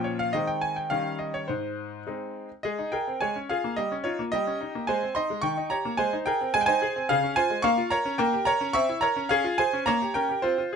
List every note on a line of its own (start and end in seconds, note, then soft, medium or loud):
0.00 0.33 A#2 medium
0.00 0.30 F3 medium
0.00 0.30 C#4 soft
0.00 0.31 F4 soft
0.04 0.19 C#5 medium
0.19 0.34 F5 medium
0.33 0.89 D#3 medium
0.33 0.87 G#3 soft
0.33 0.88 C4 soft
0.33 0.88 D#4 soft
0.33 0.48 D#5 medium
0.47 0.62 G5 medium
0.61 0.76 G#5 medium
0.76 0.91 G5 medium
0.90 1.47 D#3 medium
0.90 1.44 G3 soft
0.90 1.45 C#4 soft
0.90 1.45 D#4 soft
0.90 1.16 F5 medium
1.19 1.34 D#5 medium
1.34 1.49 C#5 medium
1.48 2.05 G#2 medium
1.48 2.00 C5 medium
2.07 2.48 G#3 soft
2.07 2.48 C4 soft
2.07 2.49 D#4 soft
2.63 2.78 G#3 medium
2.63 2.91 G#4 medium
2.63 2.92 D#5 medium
2.79 2.94 D#4 soft
2.92 3.08 G#4 soft
2.92 3.19 A#4 medium
2.92 3.18 G5 medium
3.07 3.21 C4 soft
3.21 3.35 G#3 medium
3.21 3.48 C#5 medium
3.21 3.38 G#5 medium
3.36 3.50 C#4 soft
3.49 3.65 F4 soft
3.49 3.76 G#4 medium
3.49 3.75 F5 medium
3.64 3.78 A#3 soft
3.76 3.91 G3 medium
3.76 4.04 G4 medium
3.76 3.93 D#5 medium
3.92 4.06 C#4 medium
4.04 4.19 D#4 medium
4.04 4.31 F4 medium
4.04 4.21 C#5 medium
4.19 4.34 A#3 soft
4.32 4.46 G3 medium
4.32 4.85 G4 medium
4.32 4.84 D#5 medium
4.47 4.61 C#4 soft
4.61 4.75 D#4 medium
4.75 4.89 A#3 soft
4.87 5.02 G#3 medium
4.87 5.14 C5 medium
4.87 5.13 G#5 medium
5.03 5.17 C4 medium
5.15 5.31 D#4 medium
5.15 5.42 D#5 medium
5.15 5.43 C6 medium
5.30 5.44 G#3 medium
5.42 5.57 D#3 medium
5.42 5.69 G5 medium
5.42 5.67 C#6 loud
5.57 5.72 D#4 medium
5.70 5.86 G4 medium
5.70 5.97 C#5 medium
5.70 5.99 A#5 loud
5.85 5.99 A#3 medium
5.97 6.12 G#3 medium
5.97 6.25 C5 medium
5.97 6.15 G#5 medium
6.13 6.28 D#4 medium
6.26 6.41 G#4 medium
6.26 6.53 A#4 medium
6.26 6.54 G5 loud
6.41 6.55 C4 medium
6.54 6.68 G#3 medium
6.54 6.61 G#5 loud
6.61 6.68 G5 medium
6.66 6.83 D#4 medium
6.66 7.06 C5 medium
6.66 7.09 G#5 loud
6.82 6.96 G#4 medium
6.96 7.10 C4 medium
7.09 7.23 C#3 medium
7.09 7.36 G#4 medium
7.09 7.37 F5 loud
7.23 7.38 C#4 medium
7.36 7.52 F4 medium
7.36 7.63 C5 medium
7.36 7.64 G#5 loud
7.50 7.64 G#3 medium
7.62 7.78 A#3 medium
7.62 7.90 F5 medium
7.62 7.88 C#6 loud
7.78 7.92 F4 medium
7.90 8.06 A#4 medium
7.90 8.17 C#5 medium
7.90 8.16 A#5 loud
8.05 8.19 C#4 medium
8.18 8.32 A#3 medium
8.18 8.45 A#4 medium
8.18 8.46 G5 loud
8.33 8.48 G4 medium
8.45 8.61 A#4 medium
8.45 8.73 C#5 medium
8.45 8.74 A#5 loud
8.61 8.75 C#4 medium
8.73 8.88 C4 medium
8.73 9.00 E5 medium
8.73 9.02 C#6 loud
8.89 9.03 E4 medium
9.01 9.17 A#4 medium
9.01 9.28 C#5 medium
9.01 9.29 A#5 loud
9.16 9.29 C#4 medium
9.29 9.44 C#4 medium
9.29 9.56 G#4 medium
9.29 9.58 F5 loud
9.44 9.59 F4 medium
9.58 9.73 G#4 medium
9.58 9.85 C5 medium
9.58 9.86 G#5 loud
9.73 9.87 C#4 medium
9.86 10.01 A#3 medium
9.86 10.14 C#5 medium
9.86 10.15 A#5 loud
10.02 10.16 G4 medium
10.14 10.30 C#4 medium
10.14 10.42 A#4 medium
10.14 10.41 G5 loud
10.29 10.44 G4 medium
10.42 10.58 C4 medium
10.42 10.57 F4 medium
10.42 10.76 C5 medium
10.58 10.73 F4 medium
10.73 10.76 G#4 medium